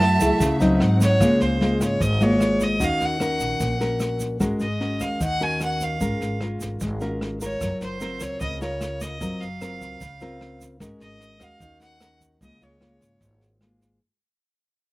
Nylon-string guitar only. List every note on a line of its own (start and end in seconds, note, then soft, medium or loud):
0.00 0.38 F#3 medium
0.21 0.57 A3 medium
0.21 0.58 E4 medium
0.21 0.58 G#4 medium
0.41 0.79 C#3 medium
0.60 1.17 F#3 medium
0.60 1.17 C4 medium
0.60 1.17 D#4 medium
1.20 1.98 C#3 medium
1.20 1.57 G#3 soft
1.20 1.57 A#3 medium
1.20 1.57 F4 medium
1.61 2.00 G#3 medium
1.61 2.01 A#3 soft
1.61 2.01 F4 medium
2.00 2.78 G#2 medium
2.20 2.77 G#3 medium
2.20 2.77 A#3 medium
2.20 2.78 F4 medium
2.80 3.58 D#3 medium
2.80 3.17 C#4 medium
2.80 3.17 F#4 medium
2.80 3.17 A#4 medium
3.20 3.77 C#4 medium
3.20 3.77 F#4 medium
3.20 3.78 A#4 medium
3.60 4.38 A#2 medium
3.80 4.37 C#4 medium
3.80 4.37 F#4 medium
3.80 4.38 A#4 medium
4.40 5.18 G#3 medium
4.40 4.66 C#4 soft
4.40 4.66 F#4 medium
4.40 4.66 A#4 medium
4.80 5.20 C#4 medium
4.80 5.20 F#4 medium
4.80 5.21 A#4 medium
5.20 5.99 D#3 medium
5.40 5.97 C#4 medium
5.40 5.98 F#4 medium
5.40 5.98 A#4 medium
6.01 6.79 G#3 medium
6.01 6.37 C#4 medium
6.01 6.38 F4 medium
6.01 6.38 A#4 medium
6.42 6.81 C#4 soft
6.42 6.81 F4 medium
6.42 6.81 A#4 medium
6.81 7.59 G#3 medium
7.01 7.38 C#4 medium
7.01 7.38 F4 medium
7.01 7.38 A#4 medium
7.42 7.98 F4 medium
7.42 7.98 A#4 medium
7.61 8.39 F#3 medium
8.00 8.58 C4 medium
8.00 8.58 F4 medium
8.00 8.58 A#4 medium
8.41 9.19 C#3 medium
8.62 9.18 F4 medium
8.62 9.18 A#4 medium
9.21 9.99 F#3 medium
9.21 9.47 C4 medium
9.21 9.47 F4 medium
9.21 9.47 A#4 medium
9.61 10.01 C4 medium
9.61 10.01 F4 medium
9.61 10.01 A#4 medium
10.01 10.79 C#3 medium
10.21 10.78 C4 medium
10.21 10.78 F4 medium
10.21 10.78 A#4 medium
10.80 11.59 G#3 medium
10.80 11.38 C#4 medium
10.80 11.38 F#4 medium
10.80 11.38 A#4 medium
11.40 11.98 C#4 soft
11.40 11.98 F#4 medium
11.40 11.98 A#4 medium
11.61 12.39 D#3 medium
12.00 12.39 C#4 medium
12.00 12.39 F#4 medium
12.00 12.39 A#4 medium
12.41 13.19 C#3 medium
12.41 12.58 G#3 medium
12.41 12.58 A#3 medium
12.41 12.58 F4 medium
12.61 12.78 G#3 medium
12.61 12.78 A#3 medium
12.61 12.78 F4 medium
12.80 13.58 G#3 soft
12.80 13.58 A#3 medium
12.80 13.58 F4 medium
13.21 13.99 G#2 medium
13.61 13.98 G#3 medium
13.61 13.98 A#3 soft
13.61 13.98 F4 medium